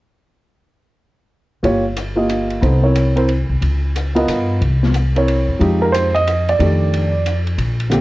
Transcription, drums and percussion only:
1.63 kick, ride
1.96 hi-hat pedal, ride
2.29 hi-hat pedal, ride
2.50 ride
2.63 kick, ride
2.96 hi-hat pedal, ride
3.17 ride
3.29 ride
3.62 kick, ride
3.96 hi-hat pedal, ride
4.16 ride
4.28 hi-hat pedal, ride
4.61 kick, ride
4.83 snare
4.94 hi-hat pedal, ride
5.16 ride
5.28 ride
5.61 kick, ride
5.94 hi-hat pedal, ride
6.15 ride
6.27 hi-hat pedal, ride
6.49 ride
6.60 kick, ride
6.94 ride
7.26 hi-hat pedal, ride
7.47 ride
7.58 kick, ride
7.80 ride
7.91 hi-hat pedal, ride

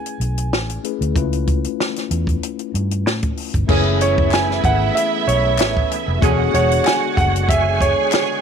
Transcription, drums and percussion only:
0.06 closed hi-hat
0.21 closed hi-hat
0.38 closed hi-hat
0.53 snare
0.70 closed hi-hat
0.84 closed hi-hat
1.02 closed hi-hat
1.16 kick, closed hi-hat
1.33 closed hi-hat
1.47 kick, closed hi-hat
1.64 closed hi-hat
1.80 snare
1.96 snare, closed hi-hat
2.11 closed hi-hat
2.27 kick, closed hi-hat
2.43 closed hi-hat
2.59 closed hi-hat
2.75 closed hi-hat
2.91 closed hi-hat
3.07 snare
3.23 kick, closed hi-hat
3.37 open hi-hat
3.54 kick, closed hi-hat
3.69 kick, crash
4.01 closed hi-hat
4.18 kick
4.31 snare, clap, closed hi-hat
4.51 snare
4.64 kick, closed hi-hat
4.97 closed hi-hat
5.29 closed hi-hat
5.59 snare, clap, closed hi-hat
5.77 kick
5.91 closed hi-hat
6.22 kick, closed hi-hat
6.54 closed hi-hat
6.72 closed hi-hat
6.85 snare, clap, closed hi-hat
7.17 kick, closed hi-hat
7.36 closed hi-hat
7.49 kick, closed hi-hat
7.81 kick, closed hi-hat
8.12 snare, clap, closed hi-hat

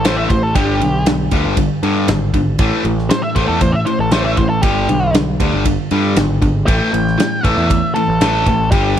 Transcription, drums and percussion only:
0.05 snare, ride
0.30 kick, ride
0.55 kick, ride
0.81 ride
1.06 snare, ride
1.31 kick, ride
1.57 kick, ride
1.83 ride
2.08 snare, ride
2.34 kick, ride
2.59 kick, ride
2.85 ride
2.98 snare
3.10 snare, ride
3.36 kick, ride
3.61 kick, ride
3.87 ride
4.11 snare, ride
4.37 kick, ride
4.63 kick, ride
4.89 ride
5.14 snare, ride
5.40 kick, ride
5.65 kick, ride
5.91 ride
6.16 snare, ride
6.42 kick, ride
6.68 kick, ride
6.94 ride
7.07 snare
7.20 snare, ride
7.44 kick, ride
7.70 kick, ride
7.96 ride
8.21 snare, ride
8.46 kick, ride
8.72 kick, ride

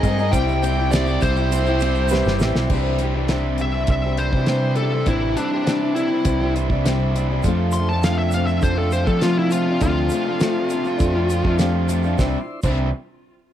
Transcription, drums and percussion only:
0.03 kick, ride, shaker
0.19 shaker
0.33 kick, ride, shaker
0.48 shaker
0.63 ride, shaker
0.92 snare, ride, shaker
1.07 shaker
1.21 kick, ride, shaker
1.36 shaker
1.52 ride, shaker
1.66 shaker
1.80 ride, shaker
1.95 shaker
2.09 shaker
2.13 snare
2.24 snare, shaker
2.39 snare, shaker
2.56 snare
2.70 kick, crash
2.99 closed hi-hat
3.28 snare, closed hi-hat
3.58 closed hi-hat
3.87 kick, closed hi-hat
4.17 closed hi-hat
4.33 kick
4.46 snare, closed hi-hat
4.75 closed hi-hat
5.06 kick, closed hi-hat
5.37 closed hi-hat
5.67 snare, closed hi-hat
5.96 closed hi-hat
6.25 kick, closed hi-hat
6.56 closed hi-hat
6.70 kick
6.86 snare, closed hi-hat
7.16 closed hi-hat
7.43 kick, closed hi-hat, shaker
7.72 closed hi-hat, shaker
8.03 snare, closed hi-hat, shaker
8.31 closed hi-hat, shaker
8.47 shaker
8.62 kick, closed hi-hat, shaker
8.91 closed hi-hat, shaker
9.06 kick, shaker
9.21 snare, closed hi-hat, shaker
9.51 closed hi-hat, shaker
9.81 kick, closed hi-hat, shaker
10.09 closed hi-hat, shaker
10.40 snare, closed hi-hat, shaker
10.70 closed hi-hat, shaker
10.84 shaker
10.99 kick, closed hi-hat, shaker
11.30 closed hi-hat, shaker
11.45 kick
11.59 snare, closed hi-hat, shaker
11.89 closed hi-hat, shaker
12.03 shaker
12.19 kick, snare, shaker
12.62 kick, crash, shaker

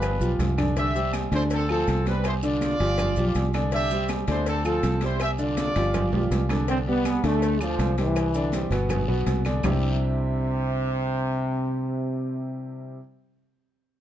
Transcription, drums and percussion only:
0.02 cowbell, low agogo, long guiro, claves, maracas
0.21 maracas
0.39 cowbell, low conga, low timbale, low agogo, short guiro, maracas
0.58 cowbell, low conga, low agogo, short guiro, claves, maracas
0.76 cowbell, high conga, low agogo, long guiro, maracas
0.96 high conga, maracas
1.13 cowbell, high conga, low agogo, short guiro, claves, maracas
1.32 cowbell, high conga, low agogo, short guiro, maracas
1.50 cowbell, high conga, long guiro, maracas
1.69 high conga, low agogo, claves
1.87 cowbell, high conga, low agogo, short guiro, maracas
2.06 cowbell, high conga, short guiro, maracas
2.24 cowbell, high conga, low agogo, long guiro, claves, maracas
2.43 maracas
2.61 cowbell, high conga, low agogo, short guiro, maracas
2.80 cowbell, high conga, low agogo, short guiro, maracas
2.98 cowbell, high conga, low conga, low agogo, long guiro, claves, maracas
3.16 high conga, low conga, maracas
3.35 cowbell, high conga, low agogo, short guiro, maracas
3.53 cowbell, high conga, low agogo, short guiro, claves, maracas
3.72 cowbell, high conga, low agogo, long guiro, maracas
3.91 high conga, maracas
4.08 cowbell, high conga, low agogo, short guiro, claves, maracas
4.27 cowbell, high conga, low agogo, short guiro, maracas
4.46 cowbell, high conga, long guiro, maracas
4.65 high conga, low agogo, claves, maracas
4.83 cowbell, high conga, low agogo, short guiro, maracas
5.01 cowbell, high conga, short guiro, maracas
5.20 cowbell, high conga, low agogo, long guiro, claves, maracas
5.38 high conga, maracas
5.57 cowbell, high conga, low agogo, short guiro, maracas
5.76 cowbell, high conga, high timbale, low agogo, short guiro, maracas
5.94 cowbell, high conga, low conga, high timbale, low agogo, long guiro, claves, maracas
6.13 high conga, low conga, low timbale
6.31 cowbell, high conga, low timbale, low agogo, short guiro, maracas
6.49 cowbell, high conga, low timbale, low agogo, short guiro, claves, maracas
6.68 cowbell, high conga, low agogo, long guiro, maracas
6.87 high conga
7.05 cowbell, high conga, low agogo, short guiro, claves, maracas
7.24 cowbell, high conga, low agogo, short guiro, maracas
7.42 cowbell, high conga, long guiro, maracas
7.61 high conga, low agogo, claves, maracas
7.79 cowbell, high conga, low timbale, low agogo, short guiro, maracas
7.98 cowbell, high conga, short guiro, maracas
8.16 cowbell, high conga, low agogo, long guiro, claves, maracas
8.34 high conga, maracas
8.52 cowbell, high conga, low agogo, short guiro, maracas
8.71 cowbell, high conga, low agogo, short guiro, maracas
8.89 cowbell, high conga, low conga, low agogo, long guiro, claves, maracas
9.08 high conga
9.26 cowbell, high conga, low timbale, low agogo, short guiro, maracas
9.45 cowbell, high conga, low agogo, short guiro, claves, maracas
9.63 low bongo, low conga, low timbale, long guiro, claves, maracas

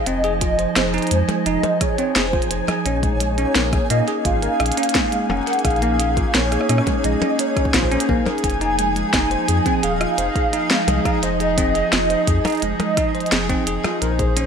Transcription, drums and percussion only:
0.06 closed hi-hat
0.24 closed hi-hat
0.41 kick, closed hi-hat
0.59 closed hi-hat
0.76 cross-stick, snare, closed hi-hat
0.94 closed hi-hat
0.98 closed hi-hat
1.02 closed hi-hat
1.07 closed hi-hat
1.11 closed hi-hat
1.29 closed hi-hat, percussion blips
1.46 closed hi-hat
1.63 closed hi-hat, percussion blips
1.81 kick, cross-stick, closed hi-hat
1.98 closed hi-hat
2.16 snare, closed hi-hat
2.33 kick
2.42 closed hi-hat
2.51 closed hi-hat
2.68 cross-stick, closed hi-hat, percussion blips
2.86 closed hi-hat
3.03 kick, closed hi-hat
3.20 closed hi-hat
3.38 closed hi-hat
3.55 snare, closed hi-hat
3.73 kick, cross-stick, closed hi-hat
3.90 closed hi-hat
4.08 closed hi-hat
4.25 kick, closed hi-hat
4.42 closed hi-hat
4.60 cross-stick, closed hi-hat
4.66 closed hi-hat
4.72 closed hi-hat
4.77 closed hi-hat
4.83 closed hi-hat
4.89 closed hi-hat
4.95 kick, snare, closed hi-hat
5.12 closed hi-hat
5.30 percussion blips
5.47 closed hi-hat
5.53 closed hi-hat
5.59 closed hi-hat
5.65 kick, cross-stick, closed hi-hat
5.70 closed hi-hat
5.76 closed hi-hat
5.82 closed hi-hat
6.00 closed hi-hat
6.17 kick, closed hi-hat
6.35 snare, closed hi-hat
6.52 cross-stick, closed hi-hat
6.61 cross-stick
6.69 cross-stick, closed hi-hat
6.78 cross-stick
6.87 kick, closed hi-hat, percussion blips
7.04 closed hi-hat
7.22 closed hi-hat, percussion blips
7.39 closed hi-hat
7.57 kick, cross-stick, closed hi-hat
7.65 kick
7.74 kick, snare, closed hi-hat
7.83 kick
7.92 closed hi-hat
8.00 closed hi-hat
8.09 kick
8.26 closed hi-hat, percussion blips
8.38 closed hi-hat
8.44 kick, closed hi-hat
8.50 closed hi-hat
8.61 closed hi-hat
8.79 closed hi-hat
8.96 closed hi-hat
9.13 kick, cross-stick, snare, closed hi-hat
9.31 closed hi-hat
9.48 closed hi-hat
9.66 kick, closed hi-hat
9.83 closed hi-hat
10.01 cross-stick, closed hi-hat
10.18 closed hi-hat
10.36 kick, closed hi-hat
10.53 closed hi-hat
10.71 snare, closed hi-hat
10.88 closed hi-hat, percussion blips
11.05 kick, cross-stick, closed hi-hat
11.23 closed hi-hat
11.40 closed hi-hat
11.58 kick, closed hi-hat
11.75 closed hi-hat
11.93 cross-stick, snare, closed hi-hat
12.10 closed hi-hat
12.27 kick, closed hi-hat
12.45 closed hi-hat, percussion blips
12.47 closed hi-hat
12.50 closed hi-hat
12.52 closed hi-hat
12.55 closed hi-hat
12.57 closed hi-hat
12.60 closed hi-hat
12.62 closed hi-hat
12.80 closed hi-hat, percussion blips
12.97 kick, cross-stick, closed hi-hat
13.15 closed hi-hat
13.20 closed hi-hat
13.26 closed hi-hat
13.32 snare, closed hi-hat
13.49 kick, closed hi-hat
13.67 closed hi-hat
13.84 cross-stick, closed hi-hat, percussion blips
14.02 closed hi-hat
14.19 kick, closed hi-hat
14.37 closed hi-hat

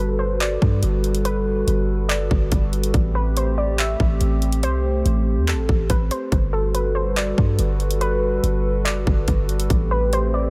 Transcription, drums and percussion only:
0.40 clap, closed hi-hat
0.62 kick
0.83 closed hi-hat
1.04 closed hi-hat
1.15 closed hi-hat
1.25 closed hi-hat
1.68 closed hi-hat
2.10 clap, closed hi-hat
2.31 kick
2.52 kick, closed hi-hat
2.73 closed hi-hat
2.83 closed hi-hat
2.94 kick, closed hi-hat
3.37 closed hi-hat
3.78 clap, closed hi-hat
4.00 kick
4.21 closed hi-hat
4.42 closed hi-hat
4.52 closed hi-hat
4.63 closed hi-hat
5.06 closed hi-hat
5.48 clap, closed hi-hat
5.69 kick
5.90 kick, closed hi-hat
6.11 closed hi-hat
6.32 kick, closed hi-hat
6.75 closed hi-hat
7.16 clap, closed hi-hat
7.38 kick
7.59 closed hi-hat
7.80 closed hi-hat
7.91 closed hi-hat
8.01 closed hi-hat
8.44 closed hi-hat
8.86 clap, closed hi-hat
9.07 kick
9.28 kick, closed hi-hat
9.49 closed hi-hat
9.60 closed hi-hat
9.70 kick, closed hi-hat
10.13 closed hi-hat

